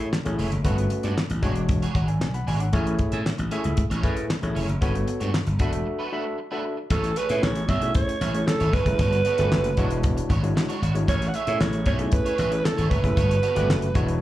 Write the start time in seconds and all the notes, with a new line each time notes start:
Already playing: E4 G#4 C#5
0.00 muted clean electric guitar stroke
0.13 muted clean electric guitar stroke, snare, clap
0.25 A1 A3 E4 G#4 C#5, muted clean electric guitar stroke, closed hi-hat
0.39 F1 A3 E4 G#4 C#5, open hi-hat
0.51 F#1, muted clean electric guitar stroke, closed hi-hat
0.64 G1 A3 B3 C#4 F#4 A4 B4 C#5, kick, closed hi-hat
0.78 muted clean electric guitar stroke, closed hi-hat
0.90 muted clean electric guitar stroke, closed hi-hat
1.03 G2 B3 F#4 A4 D5, closed hi-hat
1.18 snare, clap
1.30 A1, muted clean electric guitar stroke, closed hi-hat
1.42 E1 G#3 D4 F#4 G#4 C#5, kick, closed hi-hat
1.55 muted clean electric guitar stroke, closed hi-hat
1.69 muted clean electric guitar stroke, kick, closed hi-hat
1.82 D4 F#4 G#4 C#5, closed hi-hat
1.95 G#1 D4 F#4 G#4 C#5 F#5, kick, closed hi-hat
2.08 D5 G#5, muted clean electric guitar stroke, closed hi-hat
2.21 B1, muted clean electric guitar stroke, snare, clap
2.34 F#5 B5, muted clean electric guitar stroke, closed hi-hat
2.47 G#1 D4 F#4 G#4 C#5 D5 G#5, open hi-hat
2.60 C#5 F#5, muted clean electric guitar stroke, closed hi-hat
2.73 A1 A3 C#4 E4 G#4 C#5, kick, closed hi-hat
2.86 muted clean electric guitar stroke, closed hi-hat
2.99 muted clean electric guitar stroke, kick, closed hi-hat
3.12 A2 C#4 E4 G#4 E5, closed hi-hat
3.26 snare, clap
3.38 A1, muted clean electric guitar stroke, closed hi-hat
3.51 A3 C#4 E4 G#4 C#5 E5, closed hi-hat
3.64 C#2, muted clean electric guitar stroke, closed hi-hat
3.77 muted clean electric guitar stroke, kick, closed hi-hat
3.90 A1 C#4 E4 G#4 C#5, closed hi-hat
4.03 A2 A3 C#4 E4 G#4 B4 C#5, kick, closed hi-hat
4.16 muted clean electric guitar stroke, closed hi-hat
4.30 muted clean electric guitar stroke, snare, clap
4.42 A1 A3 E4 G#4 C#5, muted clean electric guitar stroke, closed hi-hat
4.55 F1 C#4 E4 G#4 C#5, open hi-hat
4.68 F#1, muted clean electric guitar stroke, closed hi-hat
4.81 G1 A3 B3 C#4 F#4 A4 B4 C#5, kick, closed hi-hat
4.95 muted clean electric guitar stroke, closed hi-hat
5.07 muted clean electric guitar stroke, closed hi-hat
5.20 G2 A3 C#4 F#4 C#5, closed hi-hat
5.34 snare, clap
5.47 G1, muted clean electric guitar stroke, closed hi-hat
5.59 E1 A3 D4 F#4 A4 B4 E5, kick, closed hi-hat
5.73 muted clean electric guitar stroke, closed hi-hat
5.86 muted clean electric guitar stroke
5.99 A3 D4 F#4 B4
6.12 A3 D4 F#4 A4 B4 E5
6.25 muted clean electric guitar stroke
6.38 muted clean electric guitar stroke
6.51 A3 D4 F#4 A4 B4 E5
6.64 muted clean electric guitar stroke
6.77 muted clean electric guitar stroke
6.90 A1 A3 E4 G#4 A4 C#5, kick, closed hi-hat
7.04 closed hi-hat
7.16 A3 E4 G#4 B4 C#5, closed hi-hat
7.29 A2 A3 C#4 E4 G#4 C#5 E5, closed hi-hat
7.43 A1 C#5, muted clean electric guitar stroke, snare, clap
7.55 muted clean electric guitar stroke, closed hi-hat
7.68 B1 A3 E4 G#4 C#5 E5, kick, closed hi-hat
7.82 A3 C#4 E4 G#4 C#5, muted clean electric guitar stroke, closed hi-hat
7.95 C#5, kick, closed hi-hat
8.08 muted clean electric guitar stroke, closed hi-hat
8.21 A1 A3 E4 G#4 C#5, closed hi-hat
8.34 A3 C#4 E4 G#4 C#5, muted clean electric guitar stroke, closed hi-hat
8.47 A4, muted clean electric guitar stroke, snare, clap
8.60 G#1 A3 E4 G#4 C#5, closed hi-hat
8.73 F1 A3 E4 G#4 B4 C#5, kick, closed hi-hat
8.86 F#1 A3 C#4 E4 G#4 B4, muted clean electric guitar stroke, kick, closed hi-hat
8.99 G1 B3 F#4 A4 C#5, kick, closed hi-hat
9.12 closed hi-hat
9.25 B3 F#4 A4 C#5, closed hi-hat
9.38 G1 A3 B3 C#4 F#4 G4 A4 B4 D5, closed hi-hat
9.52 F#1, muted clean electric guitar stroke, snare, clap
9.64 muted clean electric guitar stroke, closed hi-hat
9.77 E1 G#3 D4 E4 F#4 C#5, kick, closed hi-hat
9.90 muted clean electric guitar stroke, closed hi-hat
10.03 muted clean electric guitar stroke, kick, closed hi-hat
10.17 muted clean electric guitar stroke, closed hi-hat
10.30 G#1 G#3 D4 F#4 C#5, kick, closed hi-hat
10.43 G#3 D4 E4 F#4 C#5, muted clean electric guitar stroke, closed hi-hat
10.56 muted clean electric guitar stroke, snare, clap
10.69 G#3 D4 F#4 C#5, closed hi-hat
10.82 G#1 G#3 D4 F#4 C#5, closed hi-hat
10.95 G#3 D4 E4 F#4 C#5, muted clean electric guitar stroke, closed hi-hat
11.08 A1 A3 E4 G#4 C#5, kick, closed hi-hat
11.22 closed hi-hat
11.28 F#5
11.34 A3 E4 G#4 C#5 E5, closed hi-hat
11.47 A2 A3 C#4 E4 G#4 C#5 E5, closed hi-hat
11.60 A1 C#5, muted clean electric guitar stroke, snare, clap
11.73 muted clean electric guitar stroke, closed hi-hat
11.86 B1 A3 E4 G#4 C#5, kick, closed hi-hat
11.99 A3 C#4 E4 G#4 C#5, muted clean electric guitar stroke, closed hi-hat
12.06 C#5
12.12 B4, muted clean electric guitar stroke, kick, closed hi-hat
12.25 A3 E4 G#4 C#5, closed hi-hat
12.38 A1 A3 E4 G#4 C#5, closed hi-hat
12.52 A3 C#4 E4 G#4 C#5, muted clean electric guitar stroke, closed hi-hat
12.64 A4, muted clean electric guitar stroke, snare, clap
12.78 G#1 A3 E4 G#4 C#5, closed hi-hat
12.90 F1 A3 E4 G#4 B4 C#5, kick, closed hi-hat
13.03 F#1 A3 C#4 E4 G#4 E5, muted clean electric guitar stroke, kick, closed hi-hat
13.16 G1 B3 F#4 A4 C#5, kick, closed hi-hat
13.31 closed hi-hat
13.42 B3 F#4 A4 C#5, closed hi-hat
13.56 G1 A3 B3 C#4 F#4 G4 A4 B4 D5, closed hi-hat
13.69 F#1, muted clean electric guitar stroke, snare, clap
13.82 muted clean electric guitar stroke, closed hi-hat
13.94 E1 G#3 D4 E4 F#4 C#5, kick, closed hi-hat
14.08 muted clean electric guitar stroke, closed hi-hat